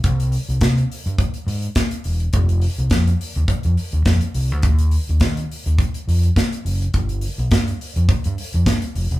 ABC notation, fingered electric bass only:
X:1
M:4/4
L:1/16
Q:"Swing 16ths" 1/4=104
K:Fm
V:1 name="Fingered electric bass" clef=bass
C,,3 C,, C,2 z G,, z2 A,,2 z2 =E,,,2 | F,,,3 C,, F,,2 z E,, z F,, z E,, F,, z C,, =D,, | E,,3 E,, E,2 z E,, z2 F,,2 z2 _G,,,2 | G,,,3 =B,,, G,,2 z F,, z G,, z F,, G,, z F,,, =E,,, |]